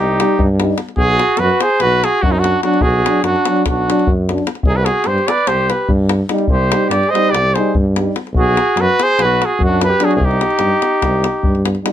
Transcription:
Already playing: C2 G4
0.00 D#4
0.19 G3 D#4, davul high
0.39 G2, davul low
0.60 G3 D#4, davul high
0.78 davul high
0.89 davul high
0.97 B1 F#4 G#4, davul low
1.19 davul high
1.37 F#2 F#4 B4, davul high
1.50 davul high
1.61 G#4 C5, davul high
1.70 davul high
1.80 B1 F#4 B4, davul high
2.04 F#4 G#4, davul high
2.22 F#2 D4 F#4, davul low
2.31 C4 D#4
2.37 D4 F#4
2.44 davul high
2.63 F#3 D4 F#4, davul high
2.74 davul high
2.81 B1 F#4 G#4, davul low
3.04 F#3 D4, davul high
3.23 F#2 D4 F#4, davul high
3.36 davul high
3.45 F#3 D4, davul high
3.56 davul high
3.65 B1 D4 F#4, davul high, davul low
3.89 F#3 D4, davul high
3.99 davul high
4.07 F#2, davul low
4.29 F#3 D4, davul high
4.38 davul high
4.47 davul high
4.55 davul high
4.63 C2 G#4, davul low
4.68 D#4
4.76 G4 B4
4.83 F#4 G#4, davul high
5.04 G2 G4 C5, davul high
5.18 davul high
5.27 B4 D5, davul high
5.38 davul high
5.47 C2 G4 C5, davul high
5.70 G4 B4, davul high
5.89 G2, davul low
6.09 davul high
6.29 G3 D#4, davul high
6.38 davul high
6.48 C2, davul low
6.52 G4 C5
6.72 G3 D#4, davul high
6.86 G2 G4 D5
6.91 davul high
7.03 davul high
7.09 C5 D#5
7.13 G3 D#4, davul high
7.25 davul high
7.30 C2 G4 D5
7.35 davul high
7.54 G3 D#4 G#4 C5, davul high
7.75 G2, davul low
7.96 G3 D#4, davul high
8.16 davul high
8.27 davul high
8.33 B1 F#4, davul low
8.39 G#4
8.57 davul high
8.76 F#2 F#4, davul high
8.81 B4
8.90 davul high
9.00 G#4 C5, davul high
9.09 davul high
9.18 B1 B4, davul high
9.24 F#4
9.42 G#4, davul high
9.46 F#4
9.59 F#2, davul low
9.64 D4 F#4
9.81 B4, davul high
9.88 G4
9.98 F#3 D4, davul high
10.04 F#4 G#4
10.11 G#4, davul high
10.16 C2 F#4
10.21 D#4 G4, davul low
10.31 davul high
10.41 davul high
10.50 davul high
10.59 G2, davul high
10.82 davul high
11.02 C2, davul high, davul low
11.24 davul high
11.43 G2, davul low
11.55 davul high
11.65 davul high
11.75 davul high
11.84 G3 D#4, davul high

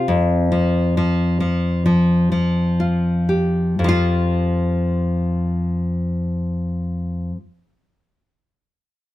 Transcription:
Already playing: C4 F4
0.08 F2
0.52 F3
0.97 F3
1.40 F3
1.86 F3
2.32 F3
2.80 F4
3.29 G4
3.79 F2
3.84 F3
3.89 F4

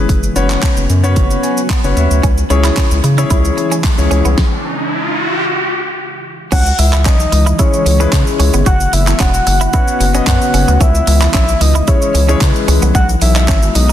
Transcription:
Already playing: C#3
0.09 F#1 F#3 B3 F#4, kick, closed hi-hat, shaker
0.23 shaker
0.36 F#1 C#4 F#4 B4 C#5, closed hi-hat, shaker
0.50 clap, shaker
0.63 kick, clap, closed hi-hat, shaker
0.77 F#1, shaker
0.90 F#2, closed hi-hat, shaker
1.03 C#4 F#4 B4 C#5, shaker
1.16 F#1, kick, closed hi-hat, shaker
1.31 shaker
1.43 G#5, closed hi-hat, shaker
1.57 shaker
1.70 F#5, kick, clap, closed hi-hat, shaker
1.84 F#1 C#4 F#4 B4 C#5, shaker
1.97 D#2 E5, closed hi-hat, shaker
2.11 D2, shaker
2.23 C#2 C#3 E3 G#3 C#4 E4, kick, closed hi-hat, riser, shaker
2.38 shaker
2.50 C#2 C#4 E4 G#4 C#5, muted clean electric guitar stroke, closed hi-hat, shaker
2.64 E4, clap, shaker
2.77 C#4, kick, clap, closed hi-hat, shaker
2.91 C#2, shaker
3.04 C#3, muted clean electric guitar stroke, closed hi-hat, shaker
3.18 C#4 E4 G#4 C#5, shaker
3.30 C#2 E4, kick, closed hi-hat, shaker
3.45 shaker
3.57 muted clean electric guitar stroke, closed hi-hat, shaker
3.72 C#4, shaker
3.84 muted clean electric guitar stroke, kick, clap, closed hi-hat, shaker
3.98 C#2 C#4 E4 G#4 C#5, shaker
4.11 C#2 C#4, closed hi-hat, shaker
4.25 C2 B3, shaker
4.38 kick, snare
6.52 C#2 C#3 E3 G#3 C#4 E4 F#5, kick, closed hi-hat, crash, shaker
6.66 shaker
6.79 C#2 E5, muted clean electric guitar stroke, open hi-hat, shaker
6.93 E4, clap, shaker
7.05 B1 C#4 D#5, kick, clap, closed hi-hat, shaker
7.20 shaker
7.32 C#2, muted clean electric guitar stroke, open hi-hat, shaker
7.46 E4, shaker
7.59 G#3 C#4 E4 G#4 C#5, kick, closed hi-hat, shaker
7.73 shaker
7.86 C#2, muted clean electric guitar stroke, open hi-hat, shaker
8.00 G#3 C#4 E4 G#4 B4, shaker
8.12 C#3 G#3 C#4 E4 G#4, muted clean electric guitar stroke, kick, clap, closed hi-hat, shaker
8.27 shaker
8.40 C#2 C#4, open hi-hat, shaker
8.54 G1 B3, shaker
8.66 F#1 C#3 F#3 B3 F#4 F#5, kick, closed hi-hat, shaker
8.80 shaker
8.93 F#1 E5, muted clean electric guitar stroke, open hi-hat, shaker
9.07 E4, clap, shaker
9.20 E1 C#4 F#5, kick, clap, closed hi-hat, shaker
9.34 shaker
9.47 F#1, muted clean electric guitar stroke, open hi-hat, shaker
9.61 E4, shaker
9.73 B3 C#4 E4 F#4 B4 C#5 F#5, kick, closed hi-hat, shaker
9.88 shaker
10.00 F#1, muted clean electric guitar stroke, open hi-hat, shaker
10.14 B3 C#4 F#4 B4 D#5, shaker
10.27 F#2 C#4 F#4 C#5 F#5, muted clean electric guitar stroke, kick, clap, closed hi-hat, shaker
10.41 shaker
10.54 F#1 C#4, open hi-hat, shaker
10.68 D2 B3, shaker
10.81 C#2 E3 G#3 C#4 E4 E5, kick, closed hi-hat, shaker
10.95 shaker
11.07 C#2, muted clean electric guitar stroke, open hi-hat, shaker
11.22 E4, clap, shaker
11.34 B1 C#4 E5, kick, clap, closed hi-hat, shaker
11.48 shaker
11.61 C#2 D#5, muted clean electric guitar stroke, open hi-hat, shaker
11.75 E4, shaker
11.87 G#3 C#4 E4 G#4 C#5, kick, closed hi-hat, shaker
12.02 shaker
12.15 C#2, muted clean electric guitar stroke, open hi-hat, shaker
12.28 G#3 C#4 E4 G#4 C#5, shaker
12.41 C#3 B4, muted clean electric guitar stroke, kick, clap, closed hi-hat, shaker
12.55 shaker
12.68 C#2 C#4, open hi-hat, shaker
12.82 C2 B3, shaker
12.95 B1 D#3 G#3 B3 F#4 F#5, kick, closed hi-hat, shaker
13.09 shaker
13.22 B1 E5, muted clean electric guitar stroke, open hi-hat, shaker
13.36 D#4, clap, shaker
13.48 G#1 C#4, kick, clap, closed hi-hat, shaker
13.62 shaker
13.75 B1 D#5, muted clean electric guitar stroke, open hi-hat, shaker
13.89 D#4, shaker

